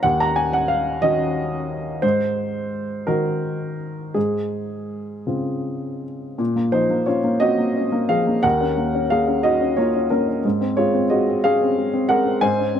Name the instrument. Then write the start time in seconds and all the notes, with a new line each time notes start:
upright piano
0.03 D#2 F#5
0.20 A#5
0.36 G#5
0.53 F#5
0.68 F5
1.02 D#3 C#4 F#4 D#5
2.02 G#2 C5
3.07 D#3 D#4 F#4 A#4
4.14 G#2 G#4
5.27 C#3 C4 F4
6.38 A#2
6.56 A#3
6.72 F3 D#4 C5
6.90 A#3
7.06 C#4 F4 C#5
7.24 A#3
7.40 C4 F#4 D#5
7.58 A#3
7.77 C#4
7.92 A#3
8.09 F3 G#4 F5
8.27 A#3
8.43 D#2 A#4 F#5
8.61 C#4
8.77 A#3
8.95 C#4
9.10 A#3 G#4 F5
9.27 C#4
9.43 D#4 F#4 D#5
9.61 C#4
9.77 A#3 F4 C#5
9.96 C#4
10.10 A#3 C#4 A#4
10.29 C#4
10.45 G#2
10.61 C4
10.77 G#3 F4 C#5
10.94 C4
11.10 G#3 F#4 D#5
11.28 C4
11.44 C#4 G#4 F5
11.61 C4
11.78 G#3
11.93 C4
12.09 G#3 A#4 F#5
12.26 C4
12.41 G#2 C5 G#5
12.59 C#4
12.75 C4